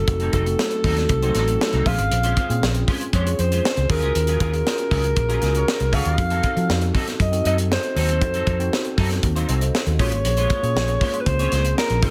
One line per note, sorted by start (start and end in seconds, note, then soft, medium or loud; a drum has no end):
0.00 1.22 F#3 medium
0.00 0.07 A3 medium
0.00 0.07 C4 medium
0.00 0.08 D#4 medium
0.00 0.08 F#4 medium
0.00 0.33 A4 medium
0.07 0.28 F1 loud
0.07 0.39 A3 medium
0.07 0.39 C4 medium
0.07 0.39 D#4 medium
0.07 0.40 F#4 medium
0.07 muted clean electric guitar stroke soft
0.07 kick loud
0.07 closed hi-hat medium
0.20 0.32 F#3 medium
0.20 0.33 C4 medium
0.20 0.33 D#4 medium
0.20 0.34 A4 medium
0.20 closed hi-hat soft
0.33 0.54 F1 medium
0.33 0.45 F#3 medium
0.33 0.46 C4 medium
0.33 0.46 D#4 medium
0.33 1.88 A4 medium
0.33 0.45 A4 medium
0.33 kick medium
0.33 closed hi-hat medium
0.45 1.09 A3 medium
0.45 1.09 C4 medium
0.45 1.09 D#4 medium
0.45 1.09 F#4 medium
0.45 muted clean electric guitar stroke soft
0.45 closed hi-hat soft
0.59 muted clean electric guitar stroke soft
0.59 snare loud
0.71 muted clean electric guitar stroke soft
0.71 closed hi-hat soft
0.84 1.05 D#2 medium
0.84 0.99 F#3 medium
0.84 0.97 C4 medium
0.84 0.97 D#4 medium
0.84 0.96 A4 medium
0.84 kick medium
0.84 open hi-hat medium
0.97 muted clean electric guitar stroke soft
0.97 snare soft
0.97 closed hi-hat soft
1.09 1.30 C2 medium
1.09 muted clean electric guitar stroke soft
1.09 kick medium
1.09 closed hi-hat medium
1.22 1.28 F#3 medium
1.22 1.34 F#3 medium
1.22 1.85 C4 medium
1.22 1.35 C4 medium
1.22 1.86 D#4 medium
1.22 1.35 D#4 medium
1.22 1.86 F#4 medium
1.22 1.37 C5 medium
1.22 closed hi-hat soft
1.28 1.89 A3 medium
1.35 1.56 A1 medium
1.35 1.47 F#3 medium
1.35 1.47 C4 medium
1.35 1.48 D#4 medium
1.35 1.47 A4 medium
1.35 snare soft
1.35 closed hi-hat medium
1.48 muted clean electric guitar stroke soft
1.48 closed hi-hat soft
1.61 muted clean electric guitar stroke soft
1.61 snare loud
1.73 1.84 C2 medium
1.73 1.85 F#3 medium
1.73 1.86 C4 medium
1.73 1.86 D#4 medium
1.73 1.87 A4 medium
1.73 closed hi-hat soft
1.86 1.96 A#1 medium
1.86 1.98 G#3 medium
1.86 2.38 C4 medium
1.86 2.39 C#4 medium
1.86 1.98 C#4 medium
1.86 1.98 F4 medium
1.86 2.39 G#4 medium
1.86 1.97 C5 medium
1.86 2.88 F5 loud
1.86 kick medium
1.86 open hi-hat medium
1.98 2.09 G#1 medium
1.98 muted clean electric guitar stroke soft
1.98 closed hi-hat medium
2.11 2.32 A#1 loud
2.11 muted clean electric guitar stroke soft
2.11 closed hi-hat medium
2.23 2.35 G#3 medium
2.23 2.36 C#4 medium
2.23 2.37 F4 medium
2.23 2.37 C5 medium
2.23 closed hi-hat soft
2.37 2.49 G#3 medium
2.37 2.49 C#4 medium
2.37 2.49 F4 medium
2.37 2.48 C5 medium
2.37 kick medium
2.37 closed hi-hat medium
2.49 2.60 A#2 medium
2.49 3.12 C4 medium
2.49 3.12 C#4 medium
2.49 3.13 F4 medium
2.49 3.13 G#4 loud
2.49 muted clean electric guitar stroke soft
2.49 closed hi-hat soft
2.62 2.83 A#1 medium
2.62 muted clean electric guitar stroke soft
2.62 snare loud
2.75 muted clean electric guitar stroke soft
2.75 closed hi-hat soft
2.88 3.03 G#3 medium
2.88 3.01 C#4 medium
2.88 3.00 F4 medium
2.88 2.99 C5 medium
2.88 kick medium
2.88 open hi-hat medium
3.01 muted clean electric guitar stroke soft
3.01 closed hi-hat soft
3.13 3.34 F2 medium
3.13 3.28 G#3 medium
3.13 3.26 C#4 loud
3.13 3.26 F4 medium
3.13 3.25 C5 loud
3.13 3.41 C#5 medium
3.13 kick medium
3.13 closed hi-hat medium
3.25 3.89 C4 medium
3.25 3.88 C#4 medium
3.25 3.88 F4 medium
3.25 3.89 G#4 medium
3.25 muted clean electric guitar stroke soft
3.25 closed hi-hat soft
3.39 3.59 F2 medium
3.39 3.90 C5 medium
3.39 muted clean electric guitar stroke soft
3.39 closed hi-hat medium
3.52 3.63 G#3 medium
3.52 3.64 C#4 medium
3.52 3.64 F4 medium
3.52 3.63 C5 medium
3.52 closed hi-hat medium
3.64 muted clean electric guitar stroke soft
3.64 snare loud
3.77 3.87 C#2 medium
3.77 muted clean electric guitar stroke soft
3.77 closed hi-hat soft
3.89 4.03 D#2 medium
3.89 4.03 F#3 medium
3.89 4.42 C#4 medium
3.89 4.02 C#4 medium
3.89 4.42 F4 medium
3.89 4.02 F4 medium
3.89 4.42 F#4 medium
3.89 4.42 G#4 medium
3.89 4.01 G#4 medium
3.89 4.37 A#4 medium
3.89 kick loud
3.89 open hi-hat medium
4.02 4.13 C#2 medium
4.02 4.14 F#3 medium
4.02 4.14 C#4 medium
4.02 4.14 F4 medium
4.02 4.14 G#4 medium
4.02 closed hi-hat medium
4.15 4.36 D#2 loud
4.15 muted clean electric guitar stroke soft
4.15 closed hi-hat medium
4.27 4.39 F#3 medium
4.27 4.39 C#4 medium
4.27 4.40 F4 medium
4.27 4.40 G#4 medium
4.27 closed hi-hat medium
4.40 4.61 D#2 loud
4.40 4.52 F#3 medium
4.40 4.52 C#4 medium
4.40 4.53 F4 medium
4.40 4.52 G#4 medium
4.40 5.96 A#4 medium
4.40 kick medium
4.40 closed hi-hat medium
4.53 5.16 C#4 medium
4.53 5.16 F4 medium
4.53 5.16 F#4 medium
4.53 5.16 G#4 medium
4.53 muted clean electric guitar stroke soft
4.53 closed hi-hat soft
4.66 muted clean electric guitar stroke soft
4.66 snare loud
4.78 muted clean electric guitar stroke medium
4.78 closed hi-hat soft
4.91 5.12 C#2 medium
4.91 5.06 F#3 medium
4.91 5.03 C#4 medium
4.91 5.03 F4 medium
4.91 5.02 G#4 medium
4.91 kick medium
4.91 open hi-hat medium
5.04 muted clean electric guitar stroke medium
5.04 closed hi-hat soft
5.16 5.37 A#1 medium
5.16 muted clean electric guitar stroke soft
5.16 kick loud
5.16 closed hi-hat medium
5.28 5.41 F#3 medium
5.28 6.02 C#4 medium
5.28 5.41 C#4 medium
5.28 6.03 F4 medium
5.28 5.41 F4 medium
5.28 6.03 F#4 medium
5.28 6.03 G#4 medium
5.28 5.43 A#4 medium
5.28 closed hi-hat medium
5.42 5.63 C#2 medium
5.42 5.54 F#3 medium
5.42 5.54 C#4 medium
5.42 5.54 F4 medium
5.42 5.54 G#4 medium
5.42 snare soft
5.42 closed hi-hat medium
5.54 5.66 G#4 medium
5.54 5.65 A#4 medium
5.54 5.65 C#5 medium
5.54 muted clean electric guitar stroke soft
5.54 closed hi-hat soft
5.67 muted clean electric guitar stroke soft
5.67 snare loud
5.80 5.93 C2 medium
5.80 muted clean electric guitar stroke soft
5.80 closed hi-hat soft
5.92 6.03 C#2 medium
5.92 6.07 F#3 medium
5.92 6.05 C#4 medium
5.92 6.04 F4 medium
5.92 6.26 F#4 medium
5.92 6.04 G#4 medium
5.92 6.26 A4 medium
5.92 6.25 C#5 loud
5.92 6.95 F5 loud
5.92 kick medium
5.92 open hi-hat medium
6.05 6.16 D#2 medium
6.05 muted clean electric guitar stroke soft
6.05 closed hi-hat medium
6.17 6.39 F2 medium
6.17 6.49 C4 medium
6.17 6.49 D#4 medium
6.17 6.50 F#4 medium
6.17 6.50 A4 medium
6.17 muted clean electric guitar stroke soft
6.17 kick loud
6.17 closed hi-hat medium
6.30 6.42 F#3 medium
6.30 6.42 C4 medium
6.30 6.43 D#4 medium
6.30 6.43 A4 medium
6.30 closed hi-hat soft
6.43 6.55 F#3 medium
6.43 6.55 C4 medium
6.43 6.55 D#4 medium
6.43 6.55 A4 medium
6.43 kick medium
6.43 closed hi-hat medium
6.55 6.67 F3 medium
6.55 7.19 C4 medium
6.55 7.19 D#4 medium
6.55 7.19 F#4 medium
6.55 7.20 A4 loud
6.55 muted clean electric guitar stroke soft
6.55 closed hi-hat soft
6.69 6.90 F2 medium
6.69 muted clean electric guitar stroke soft
6.69 snare loud
6.81 muted clean electric guitar stroke soft
6.81 closed hi-hat soft
6.93 7.09 F#3 medium
6.93 7.07 C4 medium
6.93 7.06 D#4 medium
6.93 7.06 A4 medium
6.93 kick medium
6.93 open hi-hat medium
7.07 muted clean electric guitar stroke soft
7.07 snare soft
7.07 closed hi-hat soft
7.20 7.40 F#2 medium
7.20 7.44 D#5 loud
7.20 kick medium
7.20 closed hi-hat medium
7.32 8.06 C4 medium
7.32 8.06 D#4 medium
7.32 8.06 F#4 medium
7.32 8.06 A4 medium
7.32 muted clean electric guitar stroke soft
7.32 closed hi-hat medium
7.45 7.76 F#2 medium
7.45 7.60 F#3 medium
7.45 7.58 C4 medium
7.45 7.57 D#4 medium
7.45 7.56 A4 medium
7.45 7.58 D#5 loud
7.45 closed hi-hat medium
7.58 muted clean electric guitar stroke soft
7.58 closed hi-hat medium
7.70 7.95 C5 medium
7.70 muted clean electric guitar stroke soft
7.70 snare loud
7.83 muted clean electric guitar stroke soft
7.83 closed hi-hat soft
7.96 8.21 D#2 medium
7.96 8.09 F#3 medium
7.96 8.08 C4 medium
7.96 8.08 D#4 medium
7.96 8.07 A4 medium
7.96 8.95 C5 medium
7.96 open hi-hat medium
8.09 8.21 F#3 soft
8.09 8.21 C4 medium
8.09 8.21 D#4 medium
8.09 8.20 A4 medium
8.09 closed hi-hat medium
8.21 8.42 F2 loud
8.21 8.53 C4 medium
8.21 8.53 D#4 medium
8.21 8.53 F#4 medium
8.21 8.53 A4 medium
8.21 muted clean electric guitar stroke soft
8.21 kick loud
8.21 closed hi-hat medium
8.34 8.45 F#3 medium
8.34 8.46 C4 medium
8.34 8.46 D#4 medium
8.34 8.47 A4 medium
8.34 closed hi-hat soft
8.47 8.68 F2 medium
8.47 8.58 F#3 medium
8.47 8.59 C4 medium
8.47 8.59 D#4 medium
8.47 8.58 A4 medium
8.47 kick medium
8.47 closed hi-hat medium
8.59 9.22 C4 medium
8.59 9.22 D#4 medium
8.59 9.23 F#4 medium
8.59 9.23 A4 loud
8.59 muted clean electric guitar stroke soft
8.59 closed hi-hat soft
8.72 muted clean electric guitar stroke soft
8.72 snare loud
8.85 muted clean electric guitar stroke soft
8.85 closed hi-hat soft
8.97 9.18 F#2 loud
8.97 9.12 F#3 medium
8.97 9.10 C4 medium
8.97 9.10 D#4 loud
8.97 9.09 A4 medium
8.97 kick medium
8.97 open hi-hat medium
9.10 muted clean electric guitar stroke soft
9.10 snare soft
9.10 closed hi-hat soft
9.23 9.44 D#2 medium
9.23 muted clean electric guitar stroke soft
9.23 kick medium
9.23 closed hi-hat medium
9.36 9.47 F#3 medium
9.36 9.47 C4 medium
9.36 9.48 D#4 medium
9.36 9.49 C5 medium
9.36 9.48 F5 medium
9.36 closed hi-hat medium
9.48 9.69 C2 medium
9.48 9.60 F#3 medium
9.48 9.60 C4 medium
9.48 9.61 D#4 medium
9.48 9.60 A4 medium
9.48 9.60 C5 medium
9.48 9.60 D#5 medium
9.48 closed hi-hat medium
9.61 9.86 A4 medium
9.61 9.86 C5 medium
9.61 muted clean electric guitar stroke medium
9.61 closed hi-hat medium
9.75 snare loud
9.86 9.97 D#2 medium
9.86 10.11 F#4 soft
9.86 10.11 A4 medium
9.86 muted clean electric guitar stroke soft
9.86 closed hi-hat soft
9.99 10.12 A#1 medium
9.99 10.14 G#3 medium
9.99 10.52 A#3 medium
9.99 10.52 C#4 medium
9.99 10.12 C#4 medium
9.99 10.52 F4 medium
9.99 10.11 F4 medium
9.99 10.52 G#4 medium
9.99 10.11 C5 loud
9.99 11.22 C#5 loud
9.99 kick medium
9.99 open hi-hat medium
10.12 10.22 G#1 medium
10.12 muted clean electric guitar stroke soft
10.12 closed hi-hat medium
10.25 10.45 A#1 loud
10.25 muted clean electric guitar stroke medium
10.25 closed hi-hat medium
10.37 10.49 G#3 medium
10.37 10.49 C#4 medium
10.37 10.50 F4 medium
10.37 10.50 C5 medium
10.37 closed hi-hat soft
10.50 10.62 G#3 medium
10.50 10.62 C#4 medium
10.50 10.62 F4 medium
10.50 10.62 C5 medium
10.50 kick medium
10.50 closed hi-hat medium
10.63 10.73 A#2 medium
10.63 11.26 A#3 medium
10.63 11.26 C#4 medium
10.63 11.26 F4 medium
10.63 11.26 G#4 loud
10.63 muted clean electric guitar stroke soft
10.63 closed hi-hat medium
10.75 10.96 A#1 medium
10.75 muted clean electric guitar stroke soft
10.75 snare loud
10.88 muted clean electric guitar stroke soft
10.88 closed hi-hat soft
11.01 11.16 G#3 medium
11.01 11.14 C#4 medium
11.01 11.13 F4 medium
11.01 11.13 C5 medium
11.01 kick medium
11.01 open hi-hat medium
11.14 muted clean electric guitar stroke soft
11.14 closed hi-hat soft
11.21 11.28 B4 medium
11.26 11.47 C#2 medium
11.26 11.77 C5 loud
11.26 muted clean electric guitar stroke soft
11.26 kick medium
11.26 closed hi-hat medium
11.39 11.51 G#3 medium
11.39 12.01 C4 medium
11.39 12.03 C#4 medium
11.39 11.51 C#4 medium
11.39 12.02 F4 medium
11.39 11.52 F4 medium
11.39 12.02 G#4 medium
11.39 11.53 C#5 medium
11.39 closed hi-hat medium
11.52 11.72 C#2 medium
11.52 11.63 G#3 medium
11.52 11.64 C#4 medium
11.52 11.64 F4 medium
11.52 11.63 C5 medium
11.52 snare soft
11.52 closed hi-hat medium
11.64 muted clean electric guitar stroke soft
11.64 closed hi-hat medium
11.77 12.04 A#4 medium
11.77 muted clean electric guitar stroke soft
11.77 snare loud
11.90 12.00 A#1 medium
11.90 muted clean electric guitar stroke medium
11.90 closed hi-hat soft
12.02 12.10 F1 loud
12.02 12.10 C4 medium
12.02 12.10 D#4 medium
12.02 12.10 F4 medium
12.02 12.10 G#4 medium
12.02 12.10 C5 medium
12.02 kick loud
12.02 open hi-hat medium